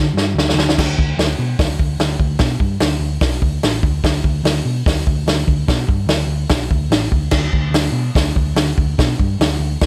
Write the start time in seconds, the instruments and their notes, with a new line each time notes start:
Already playing: picked electric bass D3
0.14 picked electric bass G2, snare
0.34 picked electric bass D2, snare
0.49 snare
0.54 picked electric bass D2
0.59 snare
0.69 snare
0.78 picked electric bass D2, kick, snare, crash
0.98 picked electric bass D2, kick
1.18 picked electric bass D2, snare, open hi-hat
1.39 picked electric bass B2
1.59 picked electric bass D2, kick, snare, open hi-hat
1.79 picked electric bass D2, kick
1.99 picked electric bass D2, snare, open hi-hat
2.19 picked electric bass D2, kick
2.39 picked electric bass B2, kick, snare, open hi-hat
2.60 picked electric bass G2, kick
2.80 picked electric bass D2, snare, open hi-hat
3.00 picked electric bass D2
3.21 picked electric bass B1, kick, snare, open hi-hat
3.42 picked electric bass D2, kick
3.63 picked electric bass A1, snare, open hi-hat
3.83 picked electric bass D2, kick
4.04 picked electric bass D2, kick, snare, open hi-hat
4.24 picked electric bass D2, kick
4.44 picked electric bass D2, snare, open hi-hat
4.65 picked electric bass B2
4.86 picked electric bass D2, kick, snare, open hi-hat
5.07 picked electric bass D2, kick
5.26 picked electric bass D2, snare, open hi-hat
5.47 picked electric bass D2, kick
5.68 picked electric bass B2, kick, snare, open hi-hat
5.88 picked electric bass G2, kick
6.06 picked electric bass D2, snare, open hi-hat
6.27 picked electric bass D2
6.49 picked electric bass B1, kick, snare, open hi-hat
6.71 picked electric bass D2, kick
6.90 picked electric bass A1, snare, open hi-hat
7.12 picked electric bass D2, kick
7.31 picked electric bass D2, kick, snare, crash
7.53 picked electric bass D2, kick
7.70 picked electric bass D2, snare, open hi-hat
7.92 picked electric bass B2
8.15 picked electric bass D2, kick, snare, open hi-hat
8.36 picked electric bass D2, kick
8.55 picked electric bass D2, snare, open hi-hat
8.78 picked electric bass D2, kick
8.98 picked electric bass B2, kick, snare, open hi-hat
9.19 picked electric bass G2, kick
9.40 picked electric bass D2, snare, open hi-hat
9.59 picked electric bass D2
9.81 picked electric bass B1, kick, snare, open hi-hat